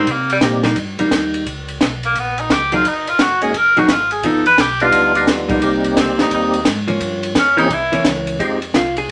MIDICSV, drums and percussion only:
0, 0, Header, 1, 2, 480
1, 0, Start_track
1, 0, Tempo, 346620
1, 101, Time_signature, 4, 2, 24, 8
1, 12618, End_track
2, 0, Start_track
2, 0, Title_t, "Drums"
2, 96, Note_on_c, 9, 51, 63
2, 97, Note_on_c, 9, 36, 25
2, 235, Note_off_c, 9, 51, 0
2, 236, Note_off_c, 9, 36, 0
2, 411, Note_on_c, 9, 51, 55
2, 550, Note_off_c, 9, 51, 0
2, 569, Note_on_c, 9, 38, 72
2, 572, Note_on_c, 9, 44, 64
2, 572, Note_on_c, 9, 51, 70
2, 575, Note_on_c, 9, 36, 26
2, 707, Note_off_c, 9, 38, 0
2, 710, Note_off_c, 9, 44, 0
2, 710, Note_off_c, 9, 51, 0
2, 714, Note_off_c, 9, 36, 0
2, 876, Note_on_c, 9, 38, 55
2, 879, Note_on_c, 9, 51, 50
2, 1015, Note_off_c, 9, 38, 0
2, 1018, Note_off_c, 9, 51, 0
2, 1051, Note_on_c, 9, 51, 58
2, 1056, Note_on_c, 9, 36, 25
2, 1189, Note_off_c, 9, 51, 0
2, 1194, Note_off_c, 9, 36, 0
2, 1368, Note_on_c, 9, 51, 56
2, 1506, Note_off_c, 9, 51, 0
2, 1538, Note_on_c, 9, 36, 27
2, 1541, Note_on_c, 9, 38, 72
2, 1544, Note_on_c, 9, 44, 56
2, 1544, Note_on_c, 9, 51, 72
2, 1676, Note_off_c, 9, 36, 0
2, 1680, Note_off_c, 9, 38, 0
2, 1682, Note_off_c, 9, 44, 0
2, 1682, Note_off_c, 9, 51, 0
2, 1855, Note_on_c, 9, 51, 52
2, 1993, Note_off_c, 9, 51, 0
2, 2020, Note_on_c, 9, 36, 20
2, 2028, Note_on_c, 9, 51, 62
2, 2159, Note_off_c, 9, 36, 0
2, 2166, Note_off_c, 9, 51, 0
2, 2331, Note_on_c, 9, 51, 53
2, 2470, Note_off_c, 9, 51, 0
2, 2499, Note_on_c, 9, 36, 27
2, 2502, Note_on_c, 9, 38, 78
2, 2504, Note_on_c, 9, 44, 52
2, 2504, Note_on_c, 9, 51, 73
2, 2638, Note_off_c, 9, 36, 0
2, 2640, Note_off_c, 9, 38, 0
2, 2643, Note_off_c, 9, 44, 0
2, 2643, Note_off_c, 9, 51, 0
2, 2814, Note_on_c, 9, 51, 48
2, 2952, Note_off_c, 9, 51, 0
2, 2979, Note_on_c, 9, 36, 20
2, 2983, Note_on_c, 9, 51, 60
2, 3117, Note_off_c, 9, 36, 0
2, 3122, Note_off_c, 9, 51, 0
2, 3293, Note_on_c, 9, 51, 51
2, 3431, Note_off_c, 9, 51, 0
2, 3460, Note_on_c, 9, 36, 27
2, 3463, Note_on_c, 9, 38, 75
2, 3466, Note_on_c, 9, 44, 60
2, 3466, Note_on_c, 9, 51, 71
2, 3598, Note_off_c, 9, 36, 0
2, 3601, Note_off_c, 9, 38, 0
2, 3604, Note_off_c, 9, 44, 0
2, 3604, Note_off_c, 9, 51, 0
2, 3766, Note_on_c, 9, 51, 52
2, 3904, Note_off_c, 9, 51, 0
2, 3939, Note_on_c, 9, 36, 22
2, 3946, Note_on_c, 9, 51, 69
2, 4078, Note_off_c, 9, 36, 0
2, 4084, Note_off_c, 9, 51, 0
2, 4255, Note_on_c, 9, 51, 55
2, 4394, Note_off_c, 9, 51, 0
2, 4416, Note_on_c, 9, 38, 77
2, 4419, Note_on_c, 9, 44, 59
2, 4419, Note_on_c, 9, 51, 75
2, 4420, Note_on_c, 9, 36, 23
2, 4555, Note_off_c, 9, 38, 0
2, 4558, Note_off_c, 9, 36, 0
2, 4558, Note_off_c, 9, 44, 0
2, 4558, Note_off_c, 9, 51, 0
2, 4730, Note_on_c, 9, 51, 50
2, 4868, Note_off_c, 9, 51, 0
2, 4900, Note_on_c, 9, 36, 20
2, 4904, Note_on_c, 9, 51, 69
2, 5038, Note_off_c, 9, 36, 0
2, 5043, Note_off_c, 9, 51, 0
2, 5218, Note_on_c, 9, 51, 53
2, 5356, Note_off_c, 9, 51, 0
2, 5377, Note_on_c, 9, 38, 75
2, 5379, Note_on_c, 9, 36, 25
2, 5379, Note_on_c, 9, 44, 57
2, 5379, Note_on_c, 9, 51, 76
2, 5515, Note_off_c, 9, 38, 0
2, 5518, Note_off_c, 9, 36, 0
2, 5518, Note_off_c, 9, 44, 0
2, 5518, Note_off_c, 9, 51, 0
2, 5689, Note_on_c, 9, 51, 52
2, 5827, Note_off_c, 9, 51, 0
2, 5860, Note_on_c, 9, 36, 25
2, 5862, Note_on_c, 9, 51, 67
2, 5998, Note_off_c, 9, 36, 0
2, 6001, Note_off_c, 9, 51, 0
2, 6173, Note_on_c, 9, 51, 55
2, 6311, Note_off_c, 9, 51, 0
2, 6340, Note_on_c, 9, 36, 22
2, 6342, Note_on_c, 9, 38, 73
2, 6344, Note_on_c, 9, 44, 55
2, 6344, Note_on_c, 9, 51, 78
2, 6478, Note_off_c, 9, 36, 0
2, 6480, Note_off_c, 9, 38, 0
2, 6483, Note_off_c, 9, 44, 0
2, 6483, Note_off_c, 9, 51, 0
2, 6649, Note_on_c, 9, 51, 53
2, 6788, Note_off_c, 9, 51, 0
2, 6817, Note_on_c, 9, 51, 70
2, 6819, Note_on_c, 9, 36, 20
2, 6956, Note_off_c, 9, 51, 0
2, 6957, Note_off_c, 9, 36, 0
2, 7135, Note_on_c, 9, 51, 58
2, 7273, Note_off_c, 9, 51, 0
2, 7301, Note_on_c, 9, 36, 21
2, 7301, Note_on_c, 9, 38, 79
2, 7304, Note_on_c, 9, 44, 64
2, 7304, Note_on_c, 9, 51, 74
2, 7440, Note_off_c, 9, 36, 0
2, 7440, Note_off_c, 9, 38, 0
2, 7442, Note_off_c, 9, 44, 0
2, 7442, Note_off_c, 9, 51, 0
2, 7608, Note_on_c, 9, 36, 71
2, 7609, Note_on_c, 9, 51, 57
2, 7746, Note_off_c, 9, 36, 0
2, 7747, Note_off_c, 9, 51, 0
2, 7778, Note_on_c, 9, 36, 21
2, 7779, Note_on_c, 9, 51, 69
2, 7917, Note_off_c, 9, 36, 0
2, 7918, Note_off_c, 9, 51, 0
2, 8092, Note_on_c, 9, 51, 53
2, 8230, Note_off_c, 9, 51, 0
2, 8260, Note_on_c, 9, 36, 28
2, 8262, Note_on_c, 9, 38, 78
2, 8265, Note_on_c, 9, 44, 64
2, 8265, Note_on_c, 9, 51, 80
2, 8398, Note_off_c, 9, 36, 0
2, 8400, Note_off_c, 9, 38, 0
2, 8403, Note_off_c, 9, 44, 0
2, 8403, Note_off_c, 9, 51, 0
2, 8571, Note_on_c, 9, 38, 65
2, 8574, Note_on_c, 9, 51, 56
2, 8710, Note_off_c, 9, 38, 0
2, 8712, Note_off_c, 9, 51, 0
2, 8738, Note_on_c, 9, 36, 28
2, 8739, Note_on_c, 9, 51, 68
2, 8876, Note_off_c, 9, 36, 0
2, 8878, Note_off_c, 9, 51, 0
2, 9051, Note_on_c, 9, 51, 59
2, 9189, Note_off_c, 9, 51, 0
2, 9210, Note_on_c, 9, 38, 79
2, 9213, Note_on_c, 9, 44, 65
2, 9213, Note_on_c, 9, 51, 81
2, 9217, Note_on_c, 9, 36, 27
2, 9348, Note_off_c, 9, 38, 0
2, 9351, Note_off_c, 9, 44, 0
2, 9351, Note_off_c, 9, 51, 0
2, 9355, Note_off_c, 9, 36, 0
2, 9526, Note_on_c, 9, 51, 54
2, 9665, Note_off_c, 9, 51, 0
2, 9698, Note_on_c, 9, 36, 29
2, 9701, Note_on_c, 9, 51, 71
2, 9836, Note_off_c, 9, 36, 0
2, 9839, Note_off_c, 9, 51, 0
2, 10014, Note_on_c, 9, 51, 57
2, 10152, Note_off_c, 9, 51, 0
2, 10179, Note_on_c, 9, 36, 29
2, 10181, Note_on_c, 9, 38, 77
2, 10183, Note_on_c, 9, 44, 70
2, 10183, Note_on_c, 9, 51, 79
2, 10317, Note_off_c, 9, 36, 0
2, 10319, Note_off_c, 9, 38, 0
2, 10322, Note_off_c, 9, 44, 0
2, 10322, Note_off_c, 9, 51, 0
2, 10499, Note_on_c, 9, 51, 53
2, 10638, Note_off_c, 9, 51, 0
2, 10660, Note_on_c, 9, 36, 28
2, 10669, Note_on_c, 9, 51, 65
2, 10799, Note_off_c, 9, 36, 0
2, 10807, Note_off_c, 9, 51, 0
2, 10977, Note_on_c, 9, 51, 56
2, 11115, Note_off_c, 9, 51, 0
2, 11138, Note_on_c, 9, 36, 26
2, 11141, Note_on_c, 9, 38, 76
2, 11144, Note_on_c, 9, 44, 61
2, 11144, Note_on_c, 9, 51, 71
2, 11277, Note_off_c, 9, 36, 0
2, 11279, Note_off_c, 9, 38, 0
2, 11282, Note_off_c, 9, 44, 0
2, 11282, Note_off_c, 9, 51, 0
2, 11453, Note_on_c, 9, 51, 55
2, 11592, Note_off_c, 9, 51, 0
2, 11620, Note_on_c, 9, 36, 27
2, 11632, Note_on_c, 9, 51, 60
2, 11758, Note_off_c, 9, 36, 0
2, 11771, Note_off_c, 9, 51, 0
2, 11935, Note_on_c, 9, 51, 52
2, 12074, Note_off_c, 9, 51, 0
2, 12100, Note_on_c, 9, 36, 22
2, 12105, Note_on_c, 9, 38, 74
2, 12108, Note_on_c, 9, 44, 56
2, 12108, Note_on_c, 9, 51, 66
2, 12238, Note_off_c, 9, 36, 0
2, 12244, Note_off_c, 9, 38, 0
2, 12247, Note_off_c, 9, 44, 0
2, 12247, Note_off_c, 9, 51, 0
2, 12416, Note_on_c, 9, 51, 51
2, 12554, Note_off_c, 9, 51, 0
2, 12618, End_track
0, 0, End_of_file